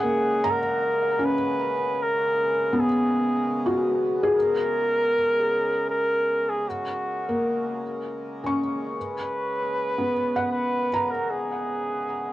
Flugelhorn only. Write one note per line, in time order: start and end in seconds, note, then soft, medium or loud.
0.00 0.52 G#4 medium
0.51 1.26 A#4 loud
1.25 2.04 B4 loud
2.02 2.81 A#4 loud
2.80 3.96 G#4 medium
4.37 5.86 A#4 loud
5.90 6.51 A#4 loud
6.49 6.70 G#4 medium
6.68 8.21 F#4 medium
9.00 10.48 B4 loud
10.52 11.12 B4 loud
11.11 11.32 A#4 medium
11.30 12.33 G#4 medium